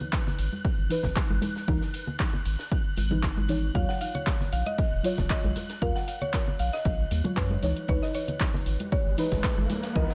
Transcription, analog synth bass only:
0.39 G#1
0.78 G#1
1.04 G#1
1.30 G#1
1.68 C#2
2.46 G#1
2.97 G#1
3.37 G#1
3.75 D#2
4.52 A#1
4.92 D#1
5.18 D#1
5.44 A#1
5.82 D#2
6.59 A#1
6.85 A#1
7.11 D#2
7.37 F#2
7.63 C#2
7.89 C#2
8.66 G#1
9.06 G#1
9.32 G#1
9.58 G#1
9.96 C#2

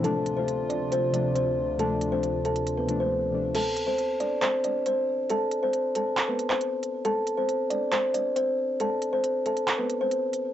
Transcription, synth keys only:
0.02 C3 F3 A3 D4
0.35 C3 F3 A3 F4
1.12 C3 F3 A3 D4
1.78 C3 F3 A3 D4
2.10 C3 F3 A3 D4
2.87 C3 F3 A3 D4
3.31 C3 F3 A3 D4

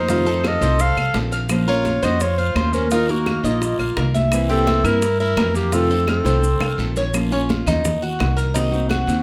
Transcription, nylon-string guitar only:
0.08 C3 D#3 A3 C4 F4
0.25 D#3 A3 C4 F4
0.61 D#3 A3 C4 F4
0.79 muted nylon-string guitar stroke
1.14 D#3 A3 C4 F4
1.49 F3 A#3 C#4 F4 C5
1.67 A#3 C#4 F4
2.02 A#3 C#4 F4 C5
2.20 muted nylon-string guitar stroke
2.55 A#3 C#4 F4 C5
2.91 D#3 A#3 D#4 F4
3.09 A#3 D#4
3.43 A#3 D#4 F4
3.62 muted nylon-string guitar stroke
3.97 D#3 A#3 D#4 F4
4.32 C3 E3 A#3 C4 E4
4.50 E3 A#3 C4 E4
4.84 E3 A#3 C4 E4
5.02 muted nylon-string guitar stroke
5.37 E3 A#3 C4 E4
5.72 C3 D#3 A3 C4 F4
5.89 D#3 A3 C4 F4
6.25 D#3 A3 C4 F4
6.42 muted nylon-string guitar stroke
6.77 D#3 A3 C4 F4
7.13 F3 A#3 C#4 F4
7.31 A#3 C#4 F4
7.67 A#3 C#4 F4
7.84 muted nylon-string guitar stroke
8.19 D#3 A#3 D#4 F#4
8.54 C3 D#3 A#3 C4 F#4
8.71 D#3 A#3 C4 F#4
9.07 D#3 A#3 C4 F#4

